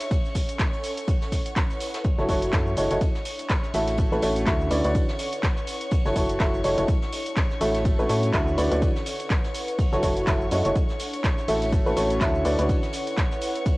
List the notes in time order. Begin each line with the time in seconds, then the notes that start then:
Already playing: C#4 C#5 C#6
0.00 snare, closed hi-hat, tambourine, shaker
0.11 kick, closed hi-hat, ride, tambourine, shaker
0.25 ride, tambourine, shaker
0.31 A4 F#5, tambourine
0.35 kick, open hi-hat, ride, shaker
0.49 closed hi-hat, tambourine, shaker
0.59 kick, snare, clap, closed hi-hat, ride, tambourine, shaker
0.73 tambourine, shaker
0.83 E4, open hi-hat, ride, tambourine, shaker
0.97 closed hi-hat, tambourine, shaker
1.07 kick, closed hi-hat, ride, tambourine, shaker
1.22 snare, tambourine, shaker
1.32 kick, snare, open hi-hat, ride, tambourine, shaker
1.39 B4
1.45 closed hi-hat, tambourine, shaker
1.56 kick, snare, clap, closed hi-hat, ride, tambourine, shaker
1.70 tambourine, shaker
1.80 snare, open hi-hat, ride, tambourine, shaker
1.94 snare, closed hi-hat, ride, tambourine, shaker
2.04 C#5 C#6, kick, closed hi-hat, ride, shaker
2.18 F#1 F#3 E4 F#4 A4 C#5, snare, tambourine, shaker
2.29 F#1 F#3 E4 F#4 A4 C#5, kick, open hi-hat, ride, tambourine, shaker
2.42 closed hi-hat, tambourine, shaker
2.53 F#2 F#3 E4 F#4 A4 E5, kick, snare, clap, closed hi-hat, ride, tambourine, shaker
2.67 shaker
2.76 F#1 G#3 E4 F#4 A4 C#5, snare, open hi-hat, ride, tambourine, shaker
2.91 F#1 G#3 E4 F#4 A4 C#5, closed hi-hat, tambourine, shaker
3.01 kick, closed hi-hat, ride, tambourine, shaker
3.15 snare, tambourine, shaker
3.25 open hi-hat, ride, tambourine, shaker
3.39 closed hi-hat, tambourine, shaker
3.49 kick, snare, clap, closed hi-hat, ride, tambourine, shaker
3.63 snare, shaker
3.74 A1 A3 C#4 E4 F#4 A4 E5, open hi-hat, tambourine, shaker
3.87 snare, closed hi-hat, tambourine, shaker
3.97 A4, kick, closed hi-hat, ride, tambourine, shaker
4.12 A1 A3 E4 F#4 A4 B4, ride, tambourine, shaker
4.18 A1 F#5, open hi-hat, ride
4.22 A3 E4 F#4 A4 C#5, tambourine, shaker
4.36 closed hi-hat, tambourine, shaker
4.46 D2 D3 E4 F#4 A4 E5, kick, snare, clap, closed hi-hat, ride, tambourine, shaker
4.60 shaker
4.71 D2 D3 E4 F#4 B4 D5, open hi-hat, ride, tambourine, shaker
4.84 D2 D3 E4 F#4 B4 D5, closed hi-hat, tambourine, shaker
4.92 B4, kick, closed hi-hat, ride, tambourine, shaker
5.08 snare, tambourine, shaker
5.19 snare, open hi-hat, ride, tambourine, shaker
5.32 closed hi-hat, tambourine, shaker
5.43 kick, snare, clap, closed hi-hat, ride, tambourine, shaker
5.57 snare, shaker
5.67 open hi-hat, ride, tambourine, shaker
5.81 closed hi-hat, tambourine, shaker
5.91 kick, closed hi-hat, ride, tambourine, shaker
6.05 F#1 F#3 E4 F#4 A4 C#5, snare, tambourine, shaker
6.16 F#1 F#3 E4 F#4 A4 C#5, kick, open hi-hat, ride, tambourine, shaker
6.29 closed hi-hat, tambourine, shaker
6.40 F#1 F#3 E4 F#4 A4 E5, kick, snare, clap, closed hi-hat, ride, tambourine, shaker
6.54 shaker
6.64 F#1 G#3 E4 F#4 A4 C#5, snare, open hi-hat, ride, tambourine, shaker
6.78 F#1 G#3 E4 F#4 A4 C#5, closed hi-hat, tambourine, shaker
6.88 kick, closed hi-hat, ride, tambourine, shaker
7.02 snare, tambourine, shaker
7.12 open hi-hat, ride, tambourine, shaker
7.26 closed hi-hat, tambourine, shaker
7.36 kick, snare, clap, closed hi-hat, ride, tambourine, shaker
7.51 snare, shaker
7.61 A1 A3 C#4 E4 F#4 A4 E5, open hi-hat, tambourine, shaker
7.75 snare, closed hi-hat, tambourine, shaker
7.85 kick, closed hi-hat, ride, tambourine, shaker
7.99 A1 A3 E4 F#4 A4 B4, ride, tambourine, shaker
8.05 A4 F#5, ride
8.09 A2 A3 E4 F#4 A4 C#5, open hi-hat, tambourine, shaker
8.23 closed hi-hat, tambourine, shaker
8.33 D2 D3 E4 F#4 A4 E5, kick, snare, clap, closed hi-hat, ride, tambourine, shaker
8.48 shaker
8.58 D2 D3 E4 F#4 B4 D5, open hi-hat, ride, tambourine, shaker
8.72 D2 D3 E4 F#4 B4 D5, closed hi-hat, tambourine, shaker
8.82 kick, closed hi-hat, ride, tambourine, shaker
8.96 B4, snare, tambourine, shaker
9.06 snare, open hi-hat, ride, tambourine, shaker
9.20 closed hi-hat, tambourine, shaker
9.30 kick, snare, clap, closed hi-hat, ride, tambourine, shaker
9.44 snare, tambourine, shaker
9.54 open hi-hat, ride, tambourine, shaker
9.68 closed hi-hat, tambourine, shaker
9.79 C#5 C#6, kick, closed hi-hat, ride, tambourine, shaker
9.92 F#1 F#3 E4 F#4 A4 C#5, snare, tambourine, shaker
10.03 F#1 F#3 E4 F#4 A4 C#5, kick, open hi-hat, ride, tambourine, shaker
10.16 closed hi-hat, tambourine, shaker
10.27 F#1 F#3 E4 F#4 A4 E5, kick, snare, clap, closed hi-hat, ride, tambourine, shaker
10.41 shaker
10.51 F#2 G#3 E4 F#4 A4 C#5, snare, open hi-hat, ride, tambourine, shaker
10.65 F#1 G#3 E4 F#4 A4 C#5, closed hi-hat, tambourine, shaker
10.75 kick, closed hi-hat, ride, tambourine, shaker
10.89 snare, tambourine, shaker
10.99 open hi-hat, ride, tambourine, shaker
11.13 closed hi-hat, tambourine, shaker
11.24 kick, snare, clap, closed hi-hat, ride, tambourine, shaker
11.38 snare, shaker
11.48 A1 A3 C#4 E4 F#4 A4 E5, open hi-hat, tambourine, shaker
11.62 snare, closed hi-hat, tambourine, shaker
11.72 A4, kick, closed hi-hat, ride, tambourine, shaker
11.86 A1 A3 E4 F#4 A4 B4, ride, tambourine, shaker
11.92 F#5
11.96 A1 A3 E4 F#4 A4 C#5, open hi-hat, ride, tambourine, shaker
12.10 closed hi-hat, tambourine, shaker
12.20 D2 D3 E4 F#4 A4 E5, kick, snare, clap, closed hi-hat, ride, tambourine, shaker
12.35 shaker
12.45 D2 D3 E4 F#4 B4 D5, open hi-hat, ride, tambourine, shaker
12.58 D2 D3 E4 F#4 B4 D5, closed hi-hat, tambourine, shaker
12.69 kick, closed hi-hat, ride, tambourine, shaker
12.83 snare, tambourine, shaker
12.87 B4
12.93 snare, open hi-hat, ride, tambourine, shaker
13.07 closed hi-hat, tambourine, shaker
13.17 kick, snare, clap, closed hi-hat, ride, tambourine, shaker
13.32 snare, shaker
13.41 open hi-hat, ride, tambourine, shaker
13.55 closed hi-hat, tambourine, shaker
13.65 kick, closed hi-hat, ride, tambourine, shaker